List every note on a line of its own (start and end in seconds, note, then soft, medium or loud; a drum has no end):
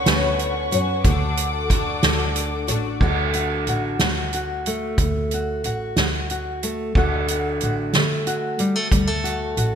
0.00 1.02 B4 medium
0.00 1.02 F#5 medium
0.00 1.01 C#6 medium
0.06 0.68 D2 medium
0.06 0.76 D3 medium
0.06 0.72 B3 medium
0.06 0.72 C#4 medium
0.06 0.71 F#4 medium
0.06 snare medium
0.06 closed hi-hat medium
0.39 closed hi-hat medium
0.71 1.04 F#2 medium
0.71 1.04 B3 soft
0.71 1.05 C#4 medium
0.71 1.04 F#4 medium
0.71 closed hi-hat medium
1.04 1.99 D2 loud
1.04 1.69 D3 medium
1.04 1.69 A3 medium
1.04 1.70 D4 medium
1.04 1.71 F#4 medium
1.04 2.99 A4 medium
1.04 2.99 F#5 medium
1.04 3.00 D6 medium
1.04 kick loud
1.04 closed hi-hat medium
1.37 closed hi-hat medium
1.70 2.03 D3 medium
1.70 2.03 A3 medium
1.70 2.02 D4 medium
1.70 2.01 F#4 medium
1.70 kick medium
1.70 closed hi-hat medium
2.03 2.65 D2 medium
2.03 2.69 D3 medium
2.03 2.69 A3 medium
2.03 2.67 D4 medium
2.03 2.66 F#4 medium
2.03 snare medium
2.03 closed hi-hat medium
2.36 closed hi-hat medium
2.67 2.99 A1 medium
2.67 3.02 A3 soft
2.67 3.01 D4 soft
2.67 3.01 F#4 soft
2.67 closed hi-hat medium
3.00 3.62 D2 medium
3.00 3.60 D2 medium
3.00 4.01 D3 soft
3.00 4.67 A3 medium
3.00 3.34 F#4 medium
3.00 kick medium
3.00 crash medium
3.33 3.69 F#4 medium
3.33 closed hi-hat medium
3.67 3.97 A1 medium
3.67 4.01 F#4 soft
3.67 closed hi-hat medium
3.99 4.95 D2 medium
3.99 4.59 D3 soft
3.99 4.34 F#4 medium
3.99 snare medium
3.99 closed hi-hat medium
4.33 5.34 F#4 soft
4.33 closed hi-hat medium
4.66 6.63 A3 soft
4.66 closed hi-hat medium
4.98 5.60 D2 medium
4.98 5.58 D2 medium
4.98 kick medium
4.98 closed hi-hat medium
5.31 5.64 F#4 medium
5.31 closed hi-hat soft
5.64 5.94 A1 medium
5.64 5.97 F#4 soft
5.64 closed hi-hat soft
5.96 6.91 D2 medium
5.96 6.56 D3 soft
5.96 6.30 F#4 medium
5.96 snare medium
5.96 closed hi-hat medium
6.30 6.92 F#4 soft
6.30 closed hi-hat soft
6.63 6.91 A3 soft
6.63 closed hi-hat medium
6.95 7.54 D2 medium
6.95 7.57 D2 medium
6.95 7.95 D3 soft
6.95 7.96 A3 soft
6.95 7.30 F#4 medium
6.95 kick medium
6.95 crash medium
7.28 7.63 F#4 soft
7.28 closed hi-hat medium
7.61 7.91 A1 medium
7.61 8.27 F#4 medium
7.61 closed hi-hat soft
7.93 8.88 D3 medium
7.93 8.53 D3 medium
7.93 8.59 A3 soft
7.93 snare medium
7.93 closed hi-hat medium
8.27 8.94 F#4 soft
8.27 closed hi-hat medium
8.59 8.76 G3 medium
8.59 closed hi-hat soft
8.76 8.91 A3 soft
8.91 9.50 D2 medium
8.91 9.53 D2 medium
8.91 9.07 G3 soft
8.91 kick medium
8.91 closed hi-hat medium
9.07 9.75 A3 soft
9.24 9.57 F#4 medium
9.24 closed hi-hat soft
9.57 9.75 A1 medium
9.57 9.75 F#4 soft
9.57 closed hi-hat soft